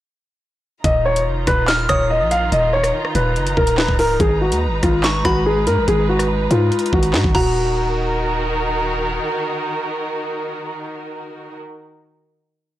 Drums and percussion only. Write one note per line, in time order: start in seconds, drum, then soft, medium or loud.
0.84 kick loud
0.84 closed hi-hat medium
1.16 closed hi-hat medium
1.47 kick medium
1.47 cross-stick medium
1.47 closed hi-hat medium
1.68 snare loud
1.68 clap medium
1.68 closed hi-hat medium
1.89 kick loud
1.89 cross-stick medium
1.89 closed hi-hat medium
2.31 closed hi-hat medium
2.52 closed hi-hat medium
2.84 cross-stick medium
2.84 closed hi-hat medium
3.05 cross-stick medium
3.15 closed hi-hat medium
3.36 closed hi-hat soft
3.47 closed hi-hat medium
3.57 kick medium
3.67 closed hi-hat medium
3.78 snare loud
3.78 clap medium
3.89 kick loud
3.99 open hi-hat medium
4.20 kick loud
4.20 closed hi-hat medium
4.52 closed hi-hat medium
4.83 kick medium
4.83 cross-stick medium
4.83 closed hi-hat medium
5.04 snare loud
5.04 clap medium
5.04 closed hi-hat medium
5.25 kick medium
5.25 cross-stick loud
5.25 closed hi-hat medium
5.67 closed hi-hat medium
5.88 closed hi-hat medium
6.19 cross-stick medium
6.19 closed hi-hat medium
6.51 closed hi-hat medium
6.72 closed hi-hat soft
6.79 closed hi-hat medium
6.86 closed hi-hat medium
6.93 kick medium
7.03 closed hi-hat medium
7.14 snare loud
7.14 clap medium
7.24 kick loud
7.35 kick loud
7.35 crash medium